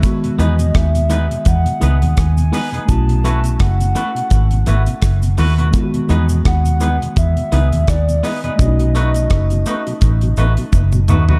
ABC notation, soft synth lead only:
X:1
M:4/4
L:1/8
Q:"Swing 16ths" 1/4=84
K:E
V:1 name="Soft synth lead"
z d e2 f2 g2 | a2 f4- f z | z2 f2 e2 =d ^d- | d6 z2 |]